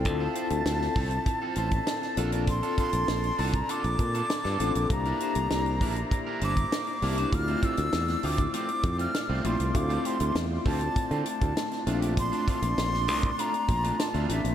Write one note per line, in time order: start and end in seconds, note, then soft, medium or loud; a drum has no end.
0.00 0.05 C4 medium
0.00 4.86 D4 medium
0.00 0.05 E4 medium
0.00 0.06 F4 medium
0.00 0.06 A4 medium
0.00 2.13 C5 medium
0.00 4.86 A5 medium
0.05 0.27 D2 medium
0.05 1.11 C4 medium
0.05 1.11 E4 medium
0.05 1.11 F4 medium
0.05 1.11 A4 medium
0.05 2.16 E5 medium
0.05 1.57 A5 loud
0.05 muted clean electric guitar stroke soft
0.05 kick medium
0.05 closed hi-hat medium
0.20 0.34 C4 medium
0.20 0.35 F4 medium
0.20 0.35 A4 medium
0.35 0.47 C4 medium
0.35 0.47 F4 medium
0.35 0.47 C5 medium
0.35 closed hi-hat medium
0.50 0.61 D2 medium
0.50 muted clean electric guitar stroke medium
0.50 closed hi-hat medium
0.66 0.87 D2 medium
0.66 snare loud
0.66 closed hi-hat medium
0.81 muted clean electric guitar stroke soft
0.81 snare soft
0.96 1.17 C2 medium
0.96 1.10 C4 medium
0.96 1.11 F4 medium
0.96 1.10 A4 medium
0.96 kick medium
0.96 open hi-hat medium
1.11 muted clean electric guitar stroke soft
1.11 closed hi-hat soft
1.26 muted clean electric guitar stroke soft
1.26 kick medium
1.26 closed hi-hat medium
1.42 1.56 C4 medium
1.42 1.56 F4 medium
1.42 1.56 A4 medium
1.56 1.78 A1 medium
1.56 1.68 C4 soft
1.56 1.68 F4 medium
1.56 1.68 C5 medium
1.56 2.17 A5 medium
1.56 closed hi-hat medium
1.71 muted clean electric guitar stroke soft
1.71 kick medium
1.71 closed hi-hat soft
1.87 muted clean electric guitar stroke soft
1.87 snare loud
1.87 closed hi-hat medium
2.02 muted clean electric guitar stroke soft
2.02 snare soft
2.17 2.60 A#1 medium
2.17 4.87 A#3 medium
2.17 3.23 C4 medium
2.17 3.23 D4 medium
2.17 2.31 D4 medium
2.17 3.23 F4 medium
2.17 2.32 F4 medium
2.17 3.23 A4 medium
2.17 2.32 A4 medium
2.17 7.15 D5 medium
2.17 closed hi-hat medium
2.32 2.44 D4 medium
2.32 2.44 F4 medium
2.32 2.43 A#4 medium
2.32 closed hi-hat soft
2.47 2.77 C6 loud
2.47 muted clean electric guitar stroke soft
2.47 kick medium
2.47 closed hi-hat medium
2.63 2.76 D4 medium
2.63 2.77 F4 medium
2.63 2.77 A4 medium
2.63 closed hi-hat soft
2.78 2.89 D4 medium
2.78 2.89 F4 medium
2.78 2.89 A4 medium
2.78 3.41 C6 loud
2.78 kick medium
2.78 closed hi-hat medium
2.93 3.04 A#1 medium
2.93 muted clean electric guitar stroke soft
2.93 closed hi-hat medium
3.08 3.30 A#1 medium
3.08 snare loud
3.08 closed hi-hat medium
3.23 muted clean electric guitar stroke soft
3.23 closed hi-hat soft
3.38 3.60 C2 medium
3.38 3.53 D4 medium
3.38 3.53 F4 medium
3.38 3.53 A4 loud
3.38 3.56 A5 medium
3.38 open hi-hat medium
3.53 3.72 A#5 medium
3.53 muted clean electric guitar stroke soft
3.53 kick medium
3.53 closed hi-hat soft
3.69 3.83 D4 medium
3.69 3.83 F4 medium
3.69 3.83 A4 medium
3.69 4.91 D6 loud
3.69 closed hi-hat medium
3.84 3.95 A#1 loud
3.84 muted clean electric guitar stroke soft
3.84 closed hi-hat soft
3.99 4.21 A#2 medium
3.99 muted clean electric guitar stroke soft
3.99 kick medium
3.99 closed hi-hat medium
4.15 4.26 D4 medium
4.15 4.26 F4 medium
4.15 4.25 A4 medium
4.15 closed hi-hat soft
4.30 muted clean electric guitar stroke medium
4.30 snare loud
4.30 closed hi-hat medium
4.44 4.56 G2 medium
4.44 4.59 D4 medium
4.44 4.59 F4 medium
4.44 4.59 A4 medium
4.44 snare soft
4.44 closed hi-hat soft
4.59 4.71 A1 medium
4.59 4.86 C4 medium
4.59 4.86 D4 medium
4.59 4.71 D4 medium
4.59 4.86 F4 medium
4.59 4.71 F4 medium
4.59 4.86 A4 medium
4.59 4.71 A4 medium
4.59 closed hi-hat medium
4.75 4.86 A#1 medium
4.75 muted clean electric guitar stroke soft
4.75 closed hi-hat medium
4.89 5.11 C2 loud
4.89 5.95 A#3 medium
4.89 5.96 D4 medium
4.89 7.15 E4 medium
4.89 5.96 E4 medium
4.89 5.96 G4 medium
4.89 11.83 C5 medium
4.89 7.15 A#5 medium
4.89 6.08 A#5 loud
4.89 muted clean electric guitar stroke soft
4.89 kick loud
4.89 closed hi-hat medium
5.05 5.20 D4 medium
5.05 5.20 E4 medium
5.05 5.20 A#4 medium
5.05 closed hi-hat soft
5.20 5.32 D4 medium
5.20 5.32 E4 medium
5.20 5.32 C5 medium
5.20 closed hi-hat medium
5.35 5.46 C2 medium
5.35 muted clean electric guitar stroke soft
5.35 closed hi-hat medium
5.51 5.81 C2 medium
5.51 snare loud
5.51 closed hi-hat medium
5.66 muted clean electric guitar stroke soft
5.66 closed hi-hat soft
5.81 6.02 A#1 medium
5.81 5.95 D4 medium
5.81 5.96 E4 medium
5.81 5.96 A#4 medium
5.81 kick medium
5.81 open hi-hat medium
5.96 muted clean electric guitar stroke soft
5.96 closed hi-hat soft
6.11 muted clean electric guitar stroke soft
6.11 kick medium
6.11 closed hi-hat medium
6.27 6.41 D4 medium
6.27 6.41 E4 medium
6.27 6.41 A#4 medium
6.41 6.63 G1 medium
6.41 6.53 D4 medium
6.41 6.53 E4 medium
6.41 6.53 C5 medium
6.41 7.36 D6 loud
6.41 closed hi-hat medium
6.57 muted clean electric guitar stroke soft
6.57 kick medium
6.57 closed hi-hat medium
6.72 muted clean electric guitar stroke soft
6.72 snare loud
6.72 closed hi-hat medium
6.87 muted clean electric guitar stroke soft
6.87 closed hi-hat soft
7.01 7.24 C2 medium
7.01 7.28 A#3 medium
7.01 7.28 D4 medium
7.01 7.17 D4 medium
7.01 7.29 E4 medium
7.01 7.17 E4 medium
7.01 7.29 G4 medium
7.01 7.17 A#4 medium
7.01 open hi-hat medium
7.18 7.29 D4 soft
7.18 7.29 E4 medium
7.18 7.29 C5 medium
7.18 closed hi-hat soft
7.32 7.54 D2 medium
7.32 8.38 A3 medium
7.32 8.38 C4 medium
7.32 14.55 D4 medium
7.32 8.38 E4 medium
7.32 8.38 F4 medium
7.32 11.83 D5 medium
7.32 7.67 F6 loud
7.32 muted clean electric guitar stroke soft
7.32 kick loud
7.32 closed hi-hat medium
7.48 7.62 A3 medium
7.48 7.62 C4 medium
7.48 7.62 F4 medium
7.48 closed hi-hat soft
7.63 7.74 A3 medium
7.63 7.75 C4 medium
7.63 7.75 F4 medium
7.63 8.27 E6 loud
7.63 kick medium
7.63 closed hi-hat medium
7.77 7.89 D2 loud
7.77 muted clean electric guitar stroke soft
7.77 closed hi-hat medium
7.93 8.15 E2 medium
7.93 snare loud
7.93 closed hi-hat medium
8.08 muted clean electric guitar stroke medium
8.08 snare soft
8.08 closed hi-hat soft
8.23 8.45 D2 medium
8.23 8.38 A3 medium
8.23 8.38 C4 medium
8.23 8.38 F4 medium
8.23 8.55 D6 medium
8.23 open hi-hat medium
8.38 muted clean electric guitar stroke soft
8.38 kick medium
8.38 closed hi-hat soft
8.54 8.68 A3 medium
8.54 8.68 C4 medium
8.54 8.67 F4 medium
8.54 8.97 D6 loud
8.54 closed hi-hat medium
8.69 muted clean electric guitar stroke soft
8.69 closed hi-hat soft
8.83 9.05 F2 medium
8.83 muted clean electric guitar stroke soft
8.83 kick medium
8.83 closed hi-hat medium
8.98 9.11 A3 medium
8.98 9.10 C4 medium
8.98 9.10 F4 medium
8.98 9.48 F6 loud
8.98 closed hi-hat soft
9.14 muted clean electric guitar stroke soft
9.14 snare loud
9.14 closed hi-hat medium
9.29 9.40 C2 medium
9.29 9.43 A3 medium
9.29 9.44 C4 medium
9.29 9.44 F4 medium
9.44 9.55 A#1 medium
9.44 9.55 A3 medium
9.44 9.71 A3 medium
9.44 9.71 C4 medium
9.44 9.56 C4 medium
9.44 9.71 E4 medium
9.44 9.56 F4 medium
9.44 9.72 F4 medium
9.44 9.78 C6 medium
9.44 closed hi-hat medium
9.59 9.71 C2 medium
9.59 muted clean electric guitar stroke soft
9.59 closed hi-hat soft
9.74 9.96 D2 loud
9.74 10.80 A3 medium
9.74 10.81 C4 medium
9.74 10.81 E4 medium
9.74 10.81 F4 medium
9.74 10.08 D6 loud
9.74 muted clean electric guitar stroke soft
9.74 kick medium
9.74 closed hi-hat medium
9.89 10.04 A3 medium
9.89 10.04 C4 medium
9.89 10.04 F4 medium
9.89 closed hi-hat soft
10.05 10.16 A3 medium
10.05 10.17 C4 medium
10.05 10.17 G4 medium
10.05 10.40 C6 medium
10.05 closed hi-hat medium
10.20 10.31 D2 loud
10.20 muted clean electric guitar stroke soft
10.20 closed hi-hat medium
10.35 10.57 E2 medium
10.35 snare loud
10.35 closed hi-hat medium
10.51 muted clean electric guitar stroke soft
10.66 10.87 D2 medium
10.66 10.80 A3 medium
10.66 10.80 C4 medium
10.66 10.80 F4 medium
10.66 11.23 A5 loud
10.66 kick medium
10.66 open hi-hat medium
10.81 muted clean electric guitar stroke soft
10.81 closed hi-hat soft
10.96 muted clean electric guitar stroke soft
10.96 muted fingered electric bass stroke soft
10.96 kick medium
10.96 closed hi-hat medium
11.11 11.22 D3 medium
11.11 11.26 A3 medium
11.11 11.26 C4 medium
11.11 11.25 F4 medium
11.11 closed hi-hat soft
11.26 11.84 A5 medium
11.26 muted clean electric guitar stroke soft
11.26 closed hi-hat medium
11.41 11.52 D2 medium
11.41 muted clean electric guitar stroke medium
11.41 kick medium
11.41 closed hi-hat medium
11.57 muted clean electric guitar stroke soft
11.57 snare loud
11.57 closed hi-hat loud
11.71 muted clean electric guitar stroke soft
11.71 snare soft
11.71 closed hi-hat soft
11.87 12.30 A#1 medium
11.87 12.93 A3 medium
11.87 12.01 A3 medium
11.87 12.93 C4 medium
11.87 12.93 D4 medium
11.87 12.01 D4 medium
11.87 11.94 E4 medium
11.87 14.55 F4 medium
11.87 12.01 F4 medium
11.87 14.55 D5 medium
11.87 closed hi-hat medium
11.94 12.96 F4 medium
12.02 12.14 A3 medium
12.02 12.14 D4 medium
12.02 12.13 G4 medium
12.02 closed hi-hat medium
12.17 12.47 C6 loud
12.17 muted clean electric guitar stroke soft
12.17 kick loud
12.17 closed hi-hat loud
12.32 12.46 A3 medium
12.32 12.47 D4 medium
12.32 12.46 F4 medium
12.32 closed hi-hat soft
12.47 12.59 A3 medium
12.47 12.59 D4 medium
12.47 12.59 F4 medium
12.47 13.42 C6 loud
12.47 kick medium
12.47 closed hi-hat medium
12.62 12.73 A#1 loud
12.62 muted clean electric guitar stroke soft
12.62 closed hi-hat medium
12.78 13.08 A#1 medium
12.78 snare loud
12.78 closed hi-hat medium
12.93 muted clean electric guitar stroke soft
12.93 snare soft
13.08 13.30 C2 medium
13.08 13.22 A3 medium
13.08 13.23 D4 medium
13.08 13.22 F4 loud
13.08 open hi-hat medium
13.23 muted clean electric guitar stroke soft
13.23 kick medium
13.23 closed hi-hat soft
13.38 13.53 A3 medium
13.38 13.53 D4 medium
13.38 13.52 F4 medium
13.38 14.02 A#5 loud
13.38 closed hi-hat medium
13.53 muted clean electric guitar stroke medium
13.53 closed hi-hat soft
13.68 13.90 A#1 medium
13.68 muted clean electric guitar stroke soft
13.68 kick medium
13.68 closed hi-hat medium
13.84 13.96 A3 medium
13.84 13.95 D4 medium
13.84 13.95 F4 medium
13.84 closed hi-hat soft
13.99 14.30 A5 loud
13.99 muted clean electric guitar stroke soft
13.99 snare loud
13.99 closed hi-hat medium
14.14 14.25 D2 medium
14.14 14.28 A3 medium
14.14 14.28 D4 medium
14.14 14.28 F4 medium
14.14 closed hi-hat soft
14.29 14.40 A1 medium
14.29 14.55 A3 medium
14.29 14.40 A3 medium
14.29 14.55 C4 medium
14.29 14.41 D4 medium
14.29 14.55 D4 medium
14.29 14.41 F4 medium
14.29 14.55 F4 medium
14.29 14.55 E5 loud
14.29 closed hi-hat medium
14.44 14.55 A#1 loud
14.44 muted clean electric guitar stroke soft
14.44 closed hi-hat medium